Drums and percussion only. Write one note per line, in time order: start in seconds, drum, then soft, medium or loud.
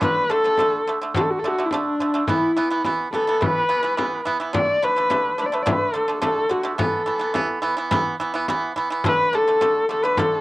0.02 frame drum medium
0.30 frame drum soft
0.58 frame drum medium
1.14 frame drum medium
1.42 frame drum soft
1.71 frame drum medium
1.99 frame drum soft
2.27 frame drum medium
2.56 frame drum soft
2.84 frame drum medium
3.13 frame drum soft
3.42 frame drum medium
3.70 frame drum soft
3.99 frame drum medium
4.27 frame drum soft
4.54 frame drum medium
4.83 frame drum soft
5.10 frame drum medium
5.67 frame drum medium
5.94 frame drum soft
6.22 frame drum medium
6.51 frame drum soft
6.79 frame drum medium
7.07 frame drum soft
7.35 frame drum medium
7.91 frame drum medium
8.20 frame drum soft
8.48 frame drum medium
8.76 frame drum soft
9.04 frame drum medium
9.33 frame drum soft
9.61 frame drum medium
10.17 frame drum medium